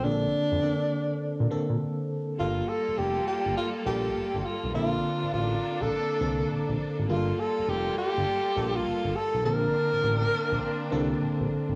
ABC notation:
X:1
M:4/4
L:1/16
Q:"Swing 16ths" 1/4=102
K:Gm
V:1 name="Tenor saxophone"
D12 z4 | F2 A2 G2 G2 F2 G4 F2 | F4 F3 A6- A z2 | F2 A2 G2 G4- G F3 A2 |
B12 z4 |]
V:2 name="String section"
z16 | [G,B,FA]16 | [B,DA]16 | [G,B,FA]16 |
[B,CD]16 |]
V:3 name="FM electric piano"
[D,B,C_A=A]4 [D,B,CA]4- [D,B,CA] z [D,B,CA]4- [D,B,CA] z | [G,B,FA]6 z4 [G,B,FA]4- [G,B,FA] z | [D,B,CA]6 z4 [D,B,CA]4- [D,B,CA] z | [G,B,F_A=A]6 z4 [G,B,FA]4- [G,B,FA] z |
[D,B,Ca]6 z4 [D,B,CA]4- [D,B,CA] z |]
V:4 name="Analog synth bass" clef=bass
B,,,2 z F,, z4 z B,, z B,, z4 | G,,,2 z F,,, F,,,2 z G,,, z2 B,,,2 G,,, G,,, z =B,,, | B,,,2 z A,,, A,,,2 z B,,, z2 C,,2 B,,, B,,, z _A,,, | G,,,2 z F,,, F,,,2 z G,,, z2 B,,,2 G,,, G,,, z =B,,, |
B,,,2 z A,,, A,,,2 z B,,, z2 C,,2 B,,, B,,, z _A,,, |]